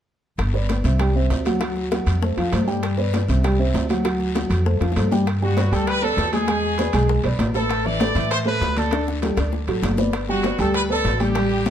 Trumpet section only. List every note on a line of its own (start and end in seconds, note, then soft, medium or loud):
5.43 5.71 F#4 medium
5.74 5.88 A4 medium
5.88 6.03 B4 loud
6.03 6.33 A4 loud
6.33 7.21 G#4 medium
7.55 7.83 A4 medium
7.86 8.31 D5 loud
8.31 8.38 C5 loud
8.47 8.75 B4 medium
8.78 9.08 A4 medium
10.30 10.58 F#4 medium
10.60 10.74 A4 medium
10.76 10.82 B4 loud
10.92 11.19 A4 loud
11.22 11.70 G4 medium